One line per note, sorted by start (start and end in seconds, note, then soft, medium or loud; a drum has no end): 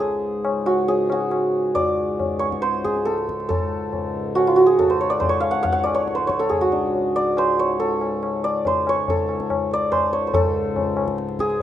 0.00 3.51 C#2 medium
0.00 3.51 G#2 medium
0.00 0.88 G#4 medium
0.00 2.14 C5 medium
0.00 tabla tin medium
0.45 tabla na medium
0.66 1.12 F#4 medium
0.66 tabla na medium
0.88 2.84 G#4 medium
0.88 tabla tin medium
1.10 4.35 F#4 medium
1.10 tabla na medium
1.31 tabla na medium
1.75 2.45 D5 medium
1.75 tabla tin medium
1.75 tabla ge medium
2.20 tabla tin medium
2.20 tabla ge medium
2.39 2.68 C#5 medium
2.39 tabla na medium
2.52 tabla ke medium
2.62 4.89 C5 medium
2.62 tabla te medium
2.75 tabla te medium
2.84 3.11 G#4 medium
2.84 tabla ke medium
2.96 tabla te medium
3.05 3.48 A4 medium
3.05 tabla te medium
3.18 tabla te medium
3.29 tabla ke medium
3.40 tabla te medium
3.49 10.32 C#2 medium
3.49 10.32 G#2 medium
3.49 4.72 A4 medium
3.49 tabla tin medium
3.49 tabla ge medium
3.93 tabla tin medium
3.93 tabla ge medium
4.35 4.53 F#4 medium
4.35 tabla na medium
4.47 4.62 F4 medium
4.56 5.46 F#4 medium
4.66 4.85 G#4 medium
4.79 6.39 A4 medium
4.79 tabla tin medium
4.79 tabla ge medium
4.90 5.07 C5 medium
5.01 5.16 C#5 medium
5.10 5.35 D5 medium
5.20 5.35 C5 medium
5.20 tabla tin medium
5.20 tabla ge medium
5.29 5.90 C#5 medium
5.40 5.57 F5 medium
5.40 tabla na medium
5.51 5.63 F#5 medium
5.51 tabla ke medium
5.63 5.78 F5 medium
5.63 5.69 F#5 medium
5.63 tabla tin medium
5.63 tabla ge medium
5.72 7.87 F#5 medium
5.84 6.00 D5 medium
5.84 tabla na medium
5.94 6.21 C#5 medium
6.08 tabla te medium
6.15 6.33 C5 medium
6.15 tabla te medium
6.27 6.78 C#5 medium
6.27 tabla ke medium
6.39 6.55 A4 medium
6.39 tabla te medium
6.49 7.86 G#4 medium
6.49 tabla tin medium
6.49 tabla ge medium
6.61 9.86 F#4 medium
6.72 7.65 D4 medium
6.94 tabla tin medium
7.16 7.65 D5 medium
7.37 7.65 C5 medium
7.37 tabla na medium
7.59 8.50 C#5 medium
7.80 9.09 A4 medium
7.80 tabla tin medium
8.01 tabla na medium
8.23 tabla na medium
8.44 8.95 D5 medium
8.44 tabla na soft
8.65 8.95 C5 medium
8.65 tabla tin medium
8.65 tabla ge medium
8.87 9.79 C#5 medium
8.87 tabla na medium
9.08 10.34 A4 medium
9.08 tabla tin medium
9.08 tabla ge medium
9.29 tabla na medium
9.40 tabla ke medium
9.50 tabla na medium
9.50 tabla ge medium
9.71 10.19 D5 medium
9.71 tabla te medium
9.92 10.19 C5 medium
9.92 tabla na medium
9.92 tabla ge medium
10.13 10.33 C#5 medium
10.13 tabla te medium
10.27 11.62 C5 medium
10.33 11.62 C#2 medium
10.33 11.62 G#2 medium
10.33 11.46 A4 medium
10.33 tabla tin loud
10.33 tabla ge loud
10.76 tabla tin medium
10.76 tabla ge medium
10.97 tabla na medium
11.08 tabla ke medium
11.18 tabla te medium
11.29 tabla te medium
11.39 11.62 G#4 medium
11.39 tabla ke medium
11.50 tabla te medium